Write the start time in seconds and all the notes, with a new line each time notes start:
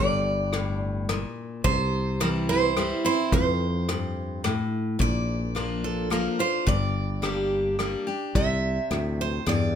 Already playing: G1 G2 D5
0.53 A2, cross-stick, closed hi-hat
1.09 A#2, cross-stick, closed hi-hat
1.64 C2 C3 C5, kick, closed hi-hat
2.20 E3 G3 C4 E4 A#4, cross-stick, closed hi-hat
2.49 C4 E4 C5
2.76 E3 G3 C4 E4, cross-stick, closed hi-hat
3.04 C4 E4 C5
3.32 F2 C5, kick, closed hi-hat
3.89 G2, cross-stick, closed hi-hat
4.44 A2, cross-stick, closed hi-hat
4.99 A#1 A#2 D5, kick, closed hi-hat
5.55 F3 A#3 D4 F4, cross-stick, closed hi-hat
5.84 A4
6.10 F3 A#3 D4 F4 A#4, cross-stick, closed hi-hat
6.39 D4 F4 C5
6.67 G1 G2 D5, kick, closed hi-hat
7.22 G3 A#3 D4 G4, cross-stick, closed hi-hat
7.79 G3 A#3 D4 G4, cross-stick, closed hi-hat
8.07 D4 G4
8.35 C2 C3 E5, kick, closed hi-hat
8.91 D2 A2, cross-stick, closed hi-hat
9.21 C5
9.46 E2 G2 D5, cross-stick, closed hi-hat